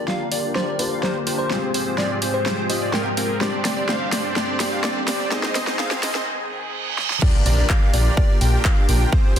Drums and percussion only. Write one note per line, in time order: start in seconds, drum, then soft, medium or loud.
0.08 snare soft
0.32 open hi-hat loud
0.55 snare soft
0.79 open hi-hat loud
1.03 snare medium
1.27 open hi-hat medium
1.51 snare medium
1.74 open hi-hat loud
1.98 snare medium
2.22 open hi-hat loud
2.46 snare medium
2.70 open hi-hat loud
2.93 snare medium
3.17 open hi-hat loud
3.41 snare medium
3.65 snare medium
3.65 open hi-hat loud
3.89 snare medium
4.12 snare medium
4.12 open hi-hat loud
4.36 snare medium
4.60 snare medium
4.60 open hi-hat loud
4.84 snare medium
5.08 snare medium
5.08 open hi-hat loud
5.32 snare medium
5.43 snare medium
5.55 snare loud
5.55 open hi-hat loud
5.67 snare medium
5.79 snare medium
5.91 snare medium
6.03 snare loud
6.03 open hi-hat loud
6.15 snare medium
6.98 snare medium
7.10 snare medium
7.22 kick loud
7.22 crash loud
7.46 open hi-hat loud
7.70 kick loud
7.70 clap loud
7.94 open hi-hat loud
8.17 kick loud
8.41 open hi-hat loud
8.65 kick loud
8.65 clap loud
8.89 open hi-hat loud
9.12 kick loud